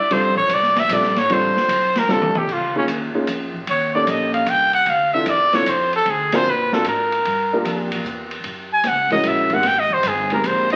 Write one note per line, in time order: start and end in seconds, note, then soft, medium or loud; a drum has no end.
0.00 0.14 D5 medium
0.10 0.48 F2 medium
0.10 0.34 G3 medium
0.10 0.34 C4 medium
0.10 0.35 D4 medium
0.10 0.35 F4 medium
0.10 0.35 A4 medium
0.10 0.37 C5 medium
0.10 kick soft
0.10 ride medium
0.37 0.55 C#5 loud
0.37 kick medium
0.49 0.88 C2 loud
0.49 kick soft
0.49 hi-hat pedal medium
0.49 ride medium
0.54 0.81 D5 loud
0.63 snare soft
0.76 0.95 E5 loud
0.76 snare medium
0.76 ride medium
0.89 1.28 A#1 loud
0.89 1.14 G3 medium
0.89 1.14 C4 medium
0.89 1.14 D4 medium
0.89 1.14 F4 medium
0.89 1.14 A4 medium
0.89 kick soft
0.89 hi-hat pedal medium
0.89 ride medium
0.94 1.20 D5 medium
1.02 snare soft
1.16 1.34 C#5 loud
1.16 snare soft
1.16 ride soft
1.29 1.54 A1 medium
1.29 1.54 G3 medium
1.29 1.54 C4 medium
1.29 1.54 D4 medium
1.29 1.54 F4 medium
1.29 1.54 A4 medium
1.29 2.01 C5 medium
1.29 kick soft
1.29 ride medium
1.56 snare soft
1.68 2.07 B1 medium
1.68 kick soft
1.68 hi-hat pedal medium
1.68 ride medium
1.95 2.13 A#4 medium
1.95 snare medium
1.95 ride soft
2.08 2.47 C2 medium
2.08 2.33 G3 medium
2.08 2.33 C4 medium
2.08 2.33 D4 medium
2.08 2.33 F4 medium
2.08 2.33 A4 medium
2.08 2.40 A4 medium
2.08 snare medium
2.21 mid tom medium
2.35 2.54 G4 medium
2.35 mid tom medium
2.47 2.87 C#2 medium
2.47 kick medium
2.47 crash medium
2.53 2.77 F4 medium
2.76 2.87 A#3 medium
2.76 2.87 C#4 medium
2.76 2.85 C#4 medium
2.76 2.87 D#4 medium
2.76 2.87 F4 medium
2.76 2.88 G#4 medium
2.88 3.13 D#2 medium
2.88 kick soft
2.88 hi-hat pedal medium
2.88 ride medium
3.15 3.27 A#3 medium
3.15 3.27 C#4 medium
3.15 3.27 D#4 medium
3.15 3.27 F4 medium
3.15 3.27 G#4 medium
3.15 muted upright bass stroke soft
3.27 3.66 F2 medium
3.27 kick soft
3.27 hi-hat pedal medium
3.27 ride medium
3.54 kick soft
3.67 4.06 D#2 medium
3.67 3.94 C#5 medium
3.67 kick soft
3.67 ride medium
3.95 4.45 A#3 medium
3.95 4.45 C#4 medium
3.95 4.45 D#4 medium
3.95 4.45 G4 medium
3.95 4.45 A4 medium
3.95 4.11 D5 medium
4.07 4.46 A#1 medium
4.07 4.33 D#5 medium
4.07 kick soft
4.07 hi-hat pedal medium
4.07 ride medium
4.34 4.51 F5 medium
4.34 ride medium
4.46 4.86 C2 medium
4.46 4.74 G5 loud
4.46 kick soft
4.46 hi-hat pedal medium
4.46 ride medium
4.73 4.91 F#5 loud
4.73 ride soft
4.86 5.25 D2 medium
4.86 5.13 F5 medium
4.86 kick soft
4.86 ride medium
5.13 5.26 C4 medium
5.13 5.26 D4 medium
5.13 5.26 E4 medium
5.13 5.26 F4 medium
5.13 5.26 A4 medium
5.13 5.31 E5 medium
5.26 5.65 E2 medium
5.26 kick soft
5.26 hi-hat pedal medium
5.26 ride medium
5.30 5.57 D5 loud
5.53 5.65 C4 medium
5.53 5.65 D4 medium
5.53 5.66 E4 medium
5.53 5.66 F4 medium
5.53 5.66 A4 medium
5.53 5.71 C#5 medium
5.53 snare soft
5.53 ride medium
5.66 6.05 F2 medium
5.66 5.95 C5 medium
5.66 kick soft
5.66 hi-hat pedal medium
5.66 ride medium
5.93 6.11 A4 loud
5.93 ride soft
6.05 6.45 D2 medium
6.05 kick soft
6.05 ride medium
6.10 6.37 G#4 medium
6.32 6.45 C4 medium
6.32 6.45 D4 medium
6.32 6.45 F4 medium
6.32 6.45 F#4 medium
6.32 6.45 A#4 medium
6.32 6.51 C5 loud
6.32 snare medium
6.32 ride medium
6.46 6.84 A#2 medium
6.46 kick soft
6.50 6.75 B4 medium
6.72 6.85 C4 medium
6.72 6.85 D4 medium
6.72 6.85 F4 medium
6.72 6.85 F#4 medium
6.72 6.87 A4 medium
6.72 6.85 A#4 medium
6.72 snare medium
6.84 7.24 G#2 medium
6.84 kick soft
6.84 hi-hat pedal medium
6.84 ride medium
6.89 8.03 A#4 medium
7.12 ride soft
7.25 7.64 G2 medium
7.25 kick soft
7.25 ride medium
7.53 8.03 A#3 medium
7.53 8.03 D4 medium
7.53 8.03 F4 medium
7.53 8.03 G4 medium
7.53 8.04 A#4 medium
7.65 8.03 F2 medium
7.65 kick soft
7.65 hi-hat pedal medium
7.65 ride medium
7.91 kick medium
7.91 ride medium
8.04 8.43 E2 medium
8.04 kick soft
8.04 hi-hat pedal medium
8.31 ride medium
8.44 8.83 F#2 medium
8.44 kick soft
8.44 ride medium
8.73 8.89 G#5 loud
8.84 9.22 C#2 medium
8.84 kick soft
8.84 snare soft
8.84 hi-hat pedal medium
8.84 ride medium
8.88 9.12 F#5 medium
9.10 9.49 G#3 medium
9.10 9.49 C#4 medium
9.10 9.49 E4 medium
9.10 9.49 F#4 medium
9.10 9.49 A#4 medium
9.10 9.29 D#5 loud
9.10 kick medium
9.10 ride medium
9.23 9.62 A#1 medium
9.23 kick soft
9.23 hi-hat pedal soft
9.23 ride medium
9.28 9.55 E5 medium
9.50 9.64 G#3 medium
9.50 9.64 C4 medium
9.50 9.64 D#4 medium
9.50 9.64 G4 medium
9.50 9.64 A#4 medium
9.50 kick medium
9.50 ride medium
9.54 9.69 F#5 loud
9.63 10.02 G#1 medium
9.63 kick soft
9.63 snare soft
9.63 ride medium
9.67 9.81 G5 loud
9.79 9.95 D#5 loud
9.90 10.09 C5 medium
9.90 kick medium
10.03 10.42 G1 medium
10.03 kick soft
10.03 hi-hat pedal medium
10.03 ride medium
10.08 10.33 G#4 medium
10.30 10.69 G#3 medium
10.30 10.69 C4 medium
10.30 10.69 D#4 medium
10.30 10.69 G4 medium
10.30 10.69 A#4 medium
10.30 10.48 A#4 medium
10.30 ride medium
10.43 10.76 A#1 medium
10.43 10.72 C5 medium
10.43 kick soft
10.43 hi-hat pedal medium
10.43 ride medium
10.70 10.76 A#3 medium
10.70 10.76 C#4 medium
10.70 10.76 E4 medium
10.70 10.76 G4 medium
10.70 10.76 D#5 loud
10.70 ride medium